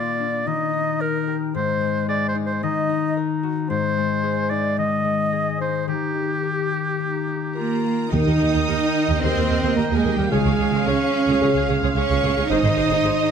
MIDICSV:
0, 0, Header, 1, 13, 480
1, 0, Start_track
1, 0, Tempo, 538600
1, 1383, Time_signature, 4, 2, 24, 8
1, 4256, Tempo, 558659
1, 7616, Tempo, 544465
1, 11693, End_track
2, 0, Start_track
2, 0, Title_t, "Violin section"
2, 0, Program_c, 0, 48
2, 6650, Note_on_c, 0, 82, 49
2, 7107, Note_off_c, 0, 82, 0
2, 7133, Note_on_c, 0, 87, 60
2, 8090, Note_off_c, 0, 87, 0
2, 8090, Note_on_c, 0, 84, 58
2, 8562, Note_off_c, 0, 84, 0
2, 8583, Note_on_c, 0, 82, 44
2, 8646, Note_off_c, 0, 82, 0
2, 8718, Note_on_c, 0, 80, 47
2, 8883, Note_off_c, 0, 80, 0
2, 8888, Note_on_c, 0, 79, 47
2, 9051, Note_off_c, 0, 79, 0
2, 9054, Note_on_c, 0, 80, 51
2, 9535, Note_on_c, 0, 85, 50
2, 9545, Note_off_c, 0, 80, 0
2, 10261, Note_off_c, 0, 85, 0
2, 10513, Note_on_c, 0, 85, 58
2, 10955, Note_off_c, 0, 85, 0
2, 10982, Note_on_c, 0, 87, 63
2, 11693, Note_off_c, 0, 87, 0
2, 11693, End_track
3, 0, Start_track
3, 0, Title_t, "Violin section"
3, 0, Program_c, 1, 48
3, 7145, Note_on_c, 1, 75, 43
3, 9021, Note_off_c, 1, 75, 0
3, 9061, Note_on_c, 1, 77, 42
3, 10954, Note_off_c, 1, 77, 0
3, 10984, Note_on_c, 1, 75, 51
3, 11693, Note_off_c, 1, 75, 0
3, 11693, End_track
4, 0, Start_track
4, 0, Title_t, "Oboe"
4, 0, Program_c, 2, 68
4, 0, Note_on_c, 2, 74, 69
4, 419, Note_on_c, 2, 75, 65
4, 432, Note_off_c, 2, 74, 0
4, 897, Note_on_c, 2, 70, 63
4, 910, Note_off_c, 2, 75, 0
4, 1213, Note_off_c, 2, 70, 0
4, 1388, Note_on_c, 2, 72, 66
4, 1832, Note_off_c, 2, 72, 0
4, 1863, Note_on_c, 2, 74, 80
4, 2020, Note_off_c, 2, 74, 0
4, 2037, Note_on_c, 2, 72, 63
4, 2106, Note_off_c, 2, 72, 0
4, 2196, Note_on_c, 2, 72, 64
4, 2342, Note_off_c, 2, 72, 0
4, 2347, Note_on_c, 2, 75, 74
4, 2814, Note_off_c, 2, 75, 0
4, 3297, Note_on_c, 2, 72, 76
4, 4010, Note_on_c, 2, 74, 69
4, 4023, Note_off_c, 2, 72, 0
4, 4254, Note_off_c, 2, 74, 0
4, 4264, Note_on_c, 2, 75, 74
4, 4954, Note_off_c, 2, 75, 0
4, 4979, Note_on_c, 2, 72, 57
4, 5205, Note_off_c, 2, 72, 0
4, 5210, Note_on_c, 2, 67, 54
4, 6865, Note_off_c, 2, 67, 0
4, 7143, Note_on_c, 2, 79, 44
4, 9020, Note_off_c, 2, 79, 0
4, 9053, Note_on_c, 2, 77, 44
4, 10950, Note_off_c, 2, 77, 0
4, 10987, Note_on_c, 2, 75, 48
4, 11693, Note_off_c, 2, 75, 0
4, 11693, End_track
5, 0, Start_track
5, 0, Title_t, "Flute"
5, 0, Program_c, 3, 73
5, 0, Note_on_c, 3, 74, 54
5, 424, Note_on_c, 3, 75, 65
5, 437, Note_off_c, 3, 74, 0
5, 901, Note_on_c, 3, 70, 57
5, 914, Note_off_c, 3, 75, 0
5, 1215, Note_off_c, 3, 70, 0
5, 1388, Note_on_c, 3, 72, 60
5, 1832, Note_off_c, 3, 72, 0
5, 1875, Note_on_c, 3, 74, 58
5, 2018, Note_off_c, 3, 74, 0
5, 2024, Note_on_c, 3, 72, 54
5, 2077, Note_off_c, 3, 72, 0
5, 2190, Note_on_c, 3, 72, 56
5, 2243, Note_off_c, 3, 72, 0
5, 2349, Note_on_c, 3, 75, 64
5, 2814, Note_off_c, 3, 75, 0
5, 3293, Note_on_c, 3, 72, 69
5, 4017, Note_on_c, 3, 74, 64
5, 4031, Note_off_c, 3, 72, 0
5, 4255, Note_on_c, 3, 75, 66
5, 4268, Note_off_c, 3, 74, 0
5, 4960, Note_off_c, 3, 75, 0
5, 4966, Note_on_c, 3, 72, 47
5, 5198, Note_off_c, 3, 72, 0
5, 5212, Note_on_c, 3, 67, 50
5, 6867, Note_off_c, 3, 67, 0
5, 11693, End_track
6, 0, Start_track
6, 0, Title_t, "Trumpet"
6, 0, Program_c, 4, 56
6, 6649, Note_on_c, 4, 70, 42
6, 7107, Note_off_c, 4, 70, 0
6, 7137, Note_on_c, 4, 75, 56
6, 8073, Note_off_c, 4, 75, 0
6, 8092, Note_on_c, 4, 72, 51
6, 8563, Note_off_c, 4, 72, 0
6, 8569, Note_on_c, 4, 70, 38
6, 8732, Note_on_c, 4, 68, 45
6, 8745, Note_off_c, 4, 70, 0
6, 8887, Note_off_c, 4, 68, 0
6, 8892, Note_on_c, 4, 67, 38
6, 9050, Note_off_c, 4, 67, 0
6, 9055, Note_on_c, 4, 68, 51
6, 9543, Note_on_c, 4, 73, 54
6, 9556, Note_off_c, 4, 68, 0
6, 10265, Note_off_c, 4, 73, 0
6, 10501, Note_on_c, 4, 73, 52
6, 10949, Note_off_c, 4, 73, 0
6, 10979, Note_on_c, 4, 75, 66
6, 11693, Note_off_c, 4, 75, 0
6, 11693, End_track
7, 0, Start_track
7, 0, Title_t, "Viola section"
7, 0, Program_c, 5, 48
7, 7136, Note_on_c, 5, 70, 49
7, 7137, Note_on_c, 5, 67, 51
7, 7185, Note_off_c, 5, 70, 0
7, 7186, Note_off_c, 5, 67, 0
7, 7264, Note_on_c, 5, 67, 33
7, 7265, Note_on_c, 5, 70, 31
7, 7311, Note_off_c, 5, 67, 0
7, 7312, Note_off_c, 5, 70, 0
7, 7376, Note_on_c, 5, 67, 29
7, 7376, Note_on_c, 5, 70, 32
7, 7424, Note_off_c, 5, 67, 0
7, 7424, Note_off_c, 5, 70, 0
7, 7496, Note_on_c, 5, 67, 35
7, 7497, Note_on_c, 5, 70, 31
7, 7543, Note_off_c, 5, 67, 0
7, 7544, Note_off_c, 5, 70, 0
7, 7611, Note_on_c, 5, 70, 51
7, 7613, Note_on_c, 5, 67, 51
7, 7660, Note_off_c, 5, 70, 0
7, 7661, Note_off_c, 5, 67, 0
7, 7970, Note_on_c, 5, 67, 44
7, 7970, Note_on_c, 5, 70, 40
7, 8019, Note_off_c, 5, 67, 0
7, 8019, Note_off_c, 5, 70, 0
7, 8097, Note_on_c, 5, 67, 32
7, 8098, Note_on_c, 5, 70, 35
7, 8144, Note_off_c, 5, 67, 0
7, 8145, Note_off_c, 5, 70, 0
7, 8214, Note_on_c, 5, 67, 32
7, 8217, Note_on_c, 5, 70, 35
7, 8262, Note_off_c, 5, 67, 0
7, 8264, Note_off_c, 5, 70, 0
7, 8333, Note_on_c, 5, 70, 52
7, 8334, Note_on_c, 5, 67, 49
7, 8381, Note_off_c, 5, 70, 0
7, 8382, Note_off_c, 5, 67, 0
7, 8457, Note_on_c, 5, 67, 36
7, 8457, Note_on_c, 5, 70, 35
7, 8504, Note_off_c, 5, 67, 0
7, 8505, Note_off_c, 5, 70, 0
7, 8573, Note_on_c, 5, 70, 34
7, 8574, Note_on_c, 5, 67, 39
7, 8621, Note_off_c, 5, 70, 0
7, 8622, Note_off_c, 5, 67, 0
7, 8694, Note_on_c, 5, 67, 47
7, 8696, Note_on_c, 5, 70, 45
7, 8742, Note_off_c, 5, 67, 0
7, 8743, Note_off_c, 5, 70, 0
7, 8815, Note_on_c, 5, 70, 44
7, 8816, Note_on_c, 5, 67, 49
7, 8863, Note_off_c, 5, 67, 0
7, 8863, Note_off_c, 5, 70, 0
7, 8935, Note_on_c, 5, 70, 42
7, 8936, Note_on_c, 5, 67, 38
7, 8983, Note_off_c, 5, 70, 0
7, 8984, Note_off_c, 5, 67, 0
7, 9050, Note_on_c, 5, 73, 48
7, 9052, Note_on_c, 5, 68, 48
7, 9100, Note_off_c, 5, 73, 0
7, 9101, Note_off_c, 5, 68, 0
7, 9173, Note_on_c, 5, 73, 31
7, 9175, Note_on_c, 5, 68, 33
7, 9223, Note_off_c, 5, 73, 0
7, 9224, Note_off_c, 5, 68, 0
7, 9303, Note_on_c, 5, 68, 37
7, 9304, Note_on_c, 5, 73, 30
7, 9351, Note_off_c, 5, 68, 0
7, 9352, Note_off_c, 5, 73, 0
7, 9428, Note_on_c, 5, 68, 35
7, 9431, Note_on_c, 5, 73, 41
7, 9476, Note_off_c, 5, 68, 0
7, 9479, Note_off_c, 5, 73, 0
7, 9538, Note_on_c, 5, 73, 49
7, 9539, Note_on_c, 5, 68, 51
7, 9588, Note_off_c, 5, 73, 0
7, 9589, Note_off_c, 5, 68, 0
7, 9908, Note_on_c, 5, 68, 49
7, 9909, Note_on_c, 5, 73, 44
7, 9955, Note_off_c, 5, 68, 0
7, 9956, Note_off_c, 5, 73, 0
7, 10031, Note_on_c, 5, 68, 37
7, 10031, Note_on_c, 5, 73, 35
7, 10078, Note_off_c, 5, 68, 0
7, 10078, Note_off_c, 5, 73, 0
7, 10148, Note_on_c, 5, 73, 34
7, 10151, Note_on_c, 5, 68, 36
7, 10196, Note_off_c, 5, 73, 0
7, 10198, Note_off_c, 5, 68, 0
7, 10263, Note_on_c, 5, 68, 60
7, 10263, Note_on_c, 5, 73, 56
7, 10311, Note_off_c, 5, 73, 0
7, 10312, Note_off_c, 5, 68, 0
7, 10390, Note_on_c, 5, 73, 38
7, 10392, Note_on_c, 5, 68, 36
7, 10437, Note_off_c, 5, 73, 0
7, 10439, Note_off_c, 5, 68, 0
7, 10508, Note_on_c, 5, 68, 38
7, 10508, Note_on_c, 5, 73, 35
7, 10556, Note_off_c, 5, 68, 0
7, 10556, Note_off_c, 5, 73, 0
7, 10621, Note_on_c, 5, 73, 53
7, 10624, Note_on_c, 5, 68, 48
7, 10670, Note_off_c, 5, 73, 0
7, 10673, Note_off_c, 5, 68, 0
7, 10743, Note_on_c, 5, 73, 40
7, 10746, Note_on_c, 5, 68, 45
7, 10792, Note_off_c, 5, 73, 0
7, 10794, Note_off_c, 5, 68, 0
7, 10864, Note_on_c, 5, 68, 50
7, 10864, Note_on_c, 5, 73, 45
7, 10912, Note_off_c, 5, 68, 0
7, 10912, Note_off_c, 5, 73, 0
7, 10981, Note_on_c, 5, 68, 51
7, 10982, Note_on_c, 5, 72, 58
7, 11029, Note_off_c, 5, 68, 0
7, 11030, Note_off_c, 5, 72, 0
7, 11105, Note_on_c, 5, 68, 34
7, 11110, Note_on_c, 5, 72, 33
7, 11152, Note_off_c, 5, 68, 0
7, 11156, Note_off_c, 5, 72, 0
7, 11218, Note_on_c, 5, 68, 38
7, 11220, Note_on_c, 5, 72, 33
7, 11266, Note_off_c, 5, 68, 0
7, 11267, Note_off_c, 5, 72, 0
7, 11336, Note_on_c, 5, 72, 34
7, 11337, Note_on_c, 5, 68, 38
7, 11384, Note_off_c, 5, 72, 0
7, 11385, Note_off_c, 5, 68, 0
7, 11464, Note_on_c, 5, 72, 58
7, 11465, Note_on_c, 5, 68, 50
7, 11510, Note_off_c, 5, 72, 0
7, 11511, Note_off_c, 5, 68, 0
7, 11693, End_track
8, 0, Start_track
8, 0, Title_t, "French horn section"
8, 0, Program_c, 6, 60
8, 7131, Note_on_c, 6, 67, 42
8, 7133, Note_on_c, 6, 70, 40
8, 7301, Note_off_c, 6, 67, 0
8, 7302, Note_off_c, 6, 70, 0
8, 8100, Note_on_c, 6, 70, 43
8, 8104, Note_on_c, 6, 67, 40
8, 8265, Note_off_c, 6, 70, 0
8, 8268, Note_off_c, 6, 67, 0
8, 9052, Note_on_c, 6, 68, 43
8, 9053, Note_on_c, 6, 65, 41
8, 9223, Note_off_c, 6, 68, 0
8, 9224, Note_off_c, 6, 65, 0
8, 10028, Note_on_c, 6, 68, 47
8, 10032, Note_on_c, 6, 65, 43
8, 10195, Note_off_c, 6, 68, 0
8, 10197, Note_off_c, 6, 65, 0
8, 10981, Note_on_c, 6, 72, 49
8, 10983, Note_on_c, 6, 63, 44
8, 11148, Note_off_c, 6, 72, 0
8, 11149, Note_off_c, 6, 63, 0
8, 11693, End_track
9, 0, Start_track
9, 0, Title_t, "Clarinet"
9, 0, Program_c, 7, 71
9, 0, Note_on_c, 7, 58, 55
9, 416, Note_on_c, 7, 63, 51
9, 429, Note_off_c, 7, 58, 0
9, 1381, Note_off_c, 7, 63, 0
9, 1387, Note_on_c, 7, 56, 60
9, 2344, Note_on_c, 7, 63, 62
9, 2358, Note_off_c, 7, 56, 0
9, 3296, Note_on_c, 7, 56, 64
9, 3310, Note_off_c, 7, 63, 0
9, 4957, Note_off_c, 7, 56, 0
9, 5198, Note_on_c, 7, 63, 47
9, 5602, Note_off_c, 7, 63, 0
9, 5690, Note_on_c, 7, 67, 41
9, 6136, Note_off_c, 7, 67, 0
9, 6179, Note_on_c, 7, 63, 42
9, 6656, Note_on_c, 7, 65, 45
9, 6669, Note_off_c, 7, 63, 0
9, 7141, Note_off_c, 7, 65, 0
9, 7146, Note_on_c, 7, 70, 44
9, 9021, Note_off_c, 7, 70, 0
9, 9063, Note_on_c, 7, 68, 47
9, 10850, Note_off_c, 7, 68, 0
9, 11000, Note_on_c, 7, 72, 49
9, 11693, Note_off_c, 7, 72, 0
9, 11693, End_track
10, 0, Start_track
10, 0, Title_t, "Harp"
10, 0, Program_c, 8, 46
10, 0, Note_on_c, 8, 46, 47
10, 0, Note_on_c, 8, 58, 38
10, 0, Note_on_c, 8, 65, 36
10, 0, Note_on_c, 8, 70, 36
10, 173, Note_on_c, 8, 62, 37
10, 413, Note_on_c, 8, 51, 44
10, 436, Note_off_c, 8, 46, 0
10, 436, Note_off_c, 8, 62, 0
10, 436, Note_off_c, 8, 65, 0
10, 654, Note_on_c, 8, 63, 36
10, 881, Note_off_c, 8, 70, 0
10, 892, Note_on_c, 8, 70, 39
10, 1134, Note_on_c, 8, 67, 40
10, 1377, Note_on_c, 8, 44, 51
10, 1398, Note_off_c, 8, 58, 0
10, 1398, Note_off_c, 8, 67, 0
10, 1398, Note_off_c, 8, 70, 0
10, 1399, Note_off_c, 8, 51, 0
10, 1615, Note_on_c, 8, 56, 39
10, 1856, Note_on_c, 8, 68, 44
10, 2086, Note_off_c, 8, 63, 0
10, 2096, Note_on_c, 8, 63, 43
10, 2342, Note_on_c, 8, 51, 55
10, 2359, Note_off_c, 8, 56, 0
10, 2359, Note_off_c, 8, 68, 0
10, 2360, Note_off_c, 8, 44, 0
10, 2567, Note_off_c, 8, 63, 0
10, 2577, Note_on_c, 8, 63, 46
10, 2824, Note_on_c, 8, 70, 44
10, 3058, Note_on_c, 8, 66, 44
10, 3297, Note_on_c, 8, 44, 58
10, 3317, Note_off_c, 8, 51, 0
10, 3317, Note_off_c, 8, 66, 0
10, 3319, Note_off_c, 8, 70, 0
10, 3538, Note_on_c, 8, 56, 44
10, 3774, Note_on_c, 8, 68, 46
10, 4008, Note_off_c, 8, 63, 0
10, 4019, Note_on_c, 8, 63, 44
10, 4253, Note_on_c, 8, 51, 43
10, 4478, Note_off_c, 8, 56, 0
10, 4488, Note_on_c, 8, 56, 37
10, 4718, Note_off_c, 8, 68, 0
10, 4728, Note_on_c, 8, 68, 41
10, 4959, Note_off_c, 8, 63, 0
10, 4969, Note_on_c, 8, 63, 34
10, 5191, Note_off_c, 8, 51, 0
10, 5202, Note_on_c, 8, 51, 42
10, 5220, Note_off_c, 8, 56, 0
10, 5221, Note_off_c, 8, 44, 0
10, 5222, Note_off_c, 8, 68, 0
10, 5426, Note_off_c, 8, 63, 0
10, 5436, Note_on_c, 8, 63, 30
10, 5678, Note_on_c, 8, 70, 33
10, 5921, Note_on_c, 8, 67, 32
10, 6164, Note_on_c, 8, 58, 30
10, 6396, Note_off_c, 8, 63, 0
10, 6406, Note_on_c, 8, 63, 31
10, 6632, Note_off_c, 8, 70, 0
10, 6642, Note_on_c, 8, 70, 33
10, 6877, Note_off_c, 8, 67, 0
10, 6888, Note_on_c, 8, 67, 30
10, 7125, Note_off_c, 8, 51, 0
10, 7135, Note_on_c, 8, 51, 40
10, 7284, Note_off_c, 8, 58, 0
10, 7294, Note_on_c, 8, 58, 35
10, 7441, Note_off_c, 8, 67, 0
10, 7452, Note_on_c, 8, 67, 35
10, 7608, Note_on_c, 8, 75, 34
10, 7761, Note_off_c, 8, 70, 0
10, 7772, Note_on_c, 8, 70, 34
10, 7920, Note_off_c, 8, 63, 0
10, 7931, Note_on_c, 8, 63, 34
10, 8080, Note_off_c, 8, 51, 0
10, 8090, Note_on_c, 8, 51, 38
10, 8242, Note_off_c, 8, 58, 0
10, 8253, Note_on_c, 8, 58, 31
10, 8401, Note_off_c, 8, 67, 0
10, 8412, Note_on_c, 8, 67, 34
10, 8561, Note_off_c, 8, 75, 0
10, 8571, Note_on_c, 8, 75, 38
10, 8726, Note_off_c, 8, 70, 0
10, 8736, Note_on_c, 8, 70, 35
10, 8886, Note_off_c, 8, 63, 0
10, 8897, Note_on_c, 8, 63, 34
10, 9054, Note_on_c, 8, 49, 42
10, 9071, Note_off_c, 8, 51, 0
10, 9072, Note_off_c, 8, 67, 0
10, 9072, Note_off_c, 8, 75, 0
10, 9073, Note_off_c, 8, 58, 0
10, 9074, Note_off_c, 8, 70, 0
10, 9075, Note_off_c, 8, 63, 0
10, 9216, Note_on_c, 8, 56, 34
10, 9388, Note_on_c, 8, 65, 33
10, 9547, Note_on_c, 8, 73, 37
10, 9707, Note_on_c, 8, 68, 35
10, 9865, Note_on_c, 8, 61, 36
10, 10017, Note_off_c, 8, 49, 0
10, 10027, Note_on_c, 8, 49, 38
10, 10171, Note_off_c, 8, 56, 0
10, 10182, Note_on_c, 8, 56, 31
10, 10332, Note_off_c, 8, 65, 0
10, 10343, Note_on_c, 8, 65, 36
10, 10497, Note_off_c, 8, 73, 0
10, 10508, Note_on_c, 8, 73, 41
10, 10654, Note_off_c, 8, 68, 0
10, 10665, Note_on_c, 8, 68, 37
10, 10816, Note_off_c, 8, 61, 0
10, 10826, Note_on_c, 8, 61, 33
10, 10987, Note_on_c, 8, 44, 48
10, 11003, Note_off_c, 8, 65, 0
10, 11004, Note_off_c, 8, 61, 0
10, 11005, Note_off_c, 8, 49, 0
10, 11005, Note_off_c, 8, 73, 0
10, 11145, Note_on_c, 8, 51, 34
10, 11299, Note_on_c, 8, 63, 40
10, 11458, Note_on_c, 8, 72, 40
10, 11603, Note_off_c, 8, 68, 0
10, 11614, Note_on_c, 8, 68, 36
10, 11693, Note_off_c, 8, 44, 0
10, 11693, Note_off_c, 8, 51, 0
10, 11693, Note_off_c, 8, 56, 0
10, 11693, Note_off_c, 8, 63, 0
10, 11693, Note_off_c, 8, 68, 0
10, 11693, Note_off_c, 8, 72, 0
10, 11693, End_track
11, 0, Start_track
11, 0, Title_t, "Cello section"
11, 0, Program_c, 10, 48
11, 6647, Note_on_c, 10, 58, 49
11, 7106, Note_off_c, 10, 58, 0
11, 7135, Note_on_c, 10, 63, 65
11, 8072, Note_off_c, 10, 63, 0
11, 8085, Note_on_c, 10, 60, 63
11, 8567, Note_on_c, 10, 58, 53
11, 8569, Note_off_c, 10, 60, 0
11, 8730, Note_off_c, 10, 58, 0
11, 8734, Note_on_c, 10, 56, 55
11, 8894, Note_off_c, 10, 56, 0
11, 8896, Note_on_c, 10, 55, 51
11, 9046, Note_on_c, 10, 56, 55
11, 9055, Note_off_c, 10, 55, 0
11, 9532, Note_off_c, 10, 56, 0
11, 9540, Note_on_c, 10, 61, 61
11, 10264, Note_off_c, 10, 61, 0
11, 10502, Note_on_c, 10, 61, 62
11, 10950, Note_off_c, 10, 61, 0
11, 10982, Note_on_c, 10, 63, 68
11, 11693, Note_off_c, 10, 63, 0
11, 11693, End_track
12, 0, Start_track
12, 0, Title_t, "Timpani"
12, 0, Program_c, 11, 47
12, 7140, Note_on_c, 11, 51, 55
12, 7820, Note_off_c, 11, 51, 0
12, 11693, End_track
13, 0, Start_track
13, 0, Title_t, "Double bass section"
13, 0, Program_c, 12, 48
13, 7144, Note_on_c, 12, 39, 49
13, 7191, Note_off_c, 12, 39, 0
13, 7260, Note_on_c, 12, 39, 30
13, 7307, Note_off_c, 12, 39, 0
13, 7376, Note_on_c, 12, 39, 33
13, 7424, Note_off_c, 12, 39, 0
13, 7500, Note_on_c, 12, 39, 36
13, 7547, Note_off_c, 12, 39, 0
13, 7619, Note_on_c, 12, 39, 49
13, 7667, Note_off_c, 12, 39, 0
13, 7973, Note_on_c, 12, 39, 52
13, 8021, Note_off_c, 12, 39, 0
13, 8097, Note_on_c, 12, 39, 36
13, 8144, Note_off_c, 12, 39, 0
13, 8214, Note_on_c, 12, 39, 39
13, 8262, Note_off_c, 12, 39, 0
13, 8335, Note_on_c, 12, 39, 48
13, 8383, Note_off_c, 12, 39, 0
13, 8453, Note_on_c, 12, 39, 35
13, 8501, Note_off_c, 12, 39, 0
13, 8575, Note_on_c, 12, 39, 35
13, 8623, Note_off_c, 12, 39, 0
13, 8697, Note_on_c, 12, 39, 53
13, 8744, Note_off_c, 12, 39, 0
13, 8816, Note_on_c, 12, 39, 39
13, 8864, Note_off_c, 12, 39, 0
13, 8933, Note_on_c, 12, 39, 38
13, 8982, Note_off_c, 12, 39, 0
13, 9057, Note_on_c, 12, 37, 55
13, 9105, Note_off_c, 12, 37, 0
13, 9174, Note_on_c, 12, 37, 30
13, 9223, Note_off_c, 12, 37, 0
13, 9298, Note_on_c, 12, 37, 35
13, 9347, Note_off_c, 12, 37, 0
13, 9417, Note_on_c, 12, 37, 35
13, 9467, Note_off_c, 12, 37, 0
13, 9539, Note_on_c, 12, 37, 48
13, 9589, Note_off_c, 12, 37, 0
13, 9903, Note_on_c, 12, 37, 51
13, 9952, Note_off_c, 12, 37, 0
13, 10020, Note_on_c, 12, 37, 38
13, 10069, Note_off_c, 12, 37, 0
13, 10140, Note_on_c, 12, 37, 41
13, 10189, Note_off_c, 12, 37, 0
13, 10261, Note_on_c, 12, 37, 56
13, 10310, Note_off_c, 12, 37, 0
13, 10383, Note_on_c, 12, 37, 35
13, 10432, Note_off_c, 12, 37, 0
13, 10500, Note_on_c, 12, 37, 36
13, 10549, Note_off_c, 12, 37, 0
13, 10625, Note_on_c, 12, 37, 58
13, 10673, Note_off_c, 12, 37, 0
13, 10743, Note_on_c, 12, 37, 37
13, 10791, Note_off_c, 12, 37, 0
13, 10868, Note_on_c, 12, 37, 40
13, 10915, Note_off_c, 12, 37, 0
13, 10980, Note_on_c, 12, 32, 62
13, 11029, Note_off_c, 12, 32, 0
13, 11099, Note_on_c, 12, 32, 37
13, 11147, Note_off_c, 12, 32, 0
13, 11218, Note_on_c, 12, 32, 42
13, 11266, Note_off_c, 12, 32, 0
13, 11333, Note_on_c, 12, 32, 36
13, 11382, Note_off_c, 12, 32, 0
13, 11452, Note_on_c, 12, 32, 56
13, 11501, Note_off_c, 12, 32, 0
13, 11693, End_track
0, 0, End_of_file